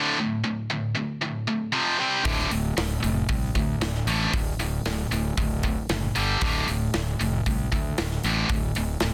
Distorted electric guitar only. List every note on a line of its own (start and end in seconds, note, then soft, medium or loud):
0.00 0.16 D2 medium
0.00 0.17 A2 medium
0.00 0.17 D3 medium
0.19 0.42 D2 medium
0.19 0.42 A2 medium
0.44 0.67 D2 medium
0.44 0.67 A2 medium
0.70 0.93 D2 medium
0.70 0.93 A2 medium
0.95 1.19 D2 medium
0.95 1.19 A2 medium
1.21 1.45 D2 medium
1.21 1.45 A2 medium
1.47 1.71 D2 medium
1.47 1.71 A2 medium
1.72 1.97 F2 medium
1.72 1.97 C3 medium
1.72 1.98 F3 medium
1.99 2.24 C3 medium
1.99 2.24 G3 medium
1.99 2.24 C4 loud
2.24 2.49 D2 medium
2.24 2.50 A2 medium
2.24 2.50 D3 medium
2.51 2.75 D2 medium
2.51 2.75 A2 medium
2.77 3.01 D2 medium
2.77 3.01 A2 medium
3.03 3.27 D2 medium
3.03 3.27 A2 medium
3.29 3.53 D2 medium
3.29 3.53 A2 medium
3.55 3.79 D2 medium
3.55 3.79 A2 medium
3.81 4.05 D2 medium
3.81 4.05 A2 medium
4.07 4.32 D2 medium
4.07 4.32 A2 medium
4.07 4.32 D3 loud
4.33 4.57 D2 medium
4.33 4.57 A2 medium
4.59 4.83 D2 medium
4.59 4.83 A2 medium
4.86 5.09 D2 medium
4.86 5.10 A2 medium
5.11 5.35 D2 medium
5.11 5.35 A2 medium
5.38 5.61 D2 medium
5.38 5.61 A2 medium
5.64 5.88 D2 medium
5.64 5.88 A2 medium
5.90 6.13 D2 medium
5.90 6.14 A2 medium
6.15 6.40 G2 medium
6.15 6.41 D3 loud
6.15 6.41 G3 medium
6.42 6.67 D2 medium
6.42 6.67 A2 medium
6.42 6.67 D3 medium
6.69 6.92 D2 medium
6.69 6.92 A2 medium
6.94 7.17 D2 medium
6.94 7.17 A2 medium
7.19 7.43 D2 medium
7.19 7.44 A2 medium
7.46 7.70 D2 medium
7.46 7.70 A2 medium
7.72 7.96 D2 medium
7.72 7.96 A2 medium
7.98 8.22 D2 medium
7.98 8.22 A2 medium
8.24 8.49 D2 medium
8.24 8.49 A2 medium
8.24 8.49 D3 loud
8.50 8.73 D2 medium
8.50 8.74 A2 medium
8.76 8.99 D2 medium
8.76 9.00 A2 medium
9.02 9.14 D2 medium
9.02 9.14 A2 medium